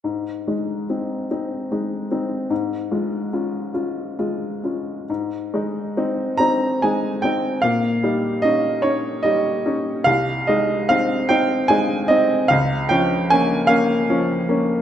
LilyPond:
\new Staff \with { instrumentName = "Upright piano" } { \time 12/8 \key aes \major \tempo 4. = 49 << { r1. | r4. bes''8 aes''8 g''8 f''4 ees''8 des''8 ees''4 | f''8 ees''8 f''8 g''8 aes''8 ees''8 f''8 g''8 aes''8 f''4. | } \\ { aes,8 <aes ees'>8 <c' ees'>8 <c' ees'>8 <aes ees'>8 <c' ees'>8 aes,8 <aes f'>8 <des' f'>8 <des' f'>8 <aes f'>8 <des' f'>8 | aes,8 <aes ees'>8 <c' ees'>8 <c' ees'>8 <aes ees'>8 <c' ees'>8 bes,8 <g ees'>8 <des' ees'>8 <des' ees'>8 <g ees'>8 <des' ees'>8 | c,8 <aes ees'>8 <c' ees'>8 <c' ees'>8 <aes ees'>8 <c' ees'>8 des,8 <f des'>8 <bes des'>8 <bes des'>8 <f des'>8 <bes des'>8 | } >> }